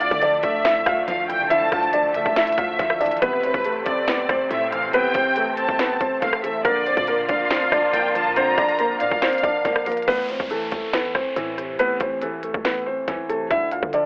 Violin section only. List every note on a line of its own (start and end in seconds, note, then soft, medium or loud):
0.00 0.40 D5 loud
0.43 1.04 E5 medium
1.08 1.28 F5 medium
1.29 1.50 G5 medium
1.51 2.11 A5 loud
2.15 3.18 E5 loud
3.22 3.82 B4 loud
3.87 4.47 D5 medium
4.51 4.71 E5 medium
4.72 4.93 F5 medium
4.94 5.54 G5 loud
5.58 6.18 A5 medium
6.22 6.43 F5 medium
6.43 6.64 E5 medium
6.65 7.25 D5 loud
7.29 7.90 F5 medium
7.94 8.14 G5 medium
8.15 8.35 A5 medium
8.36 8.97 A#5 loud
9.01 10.04 F5 loud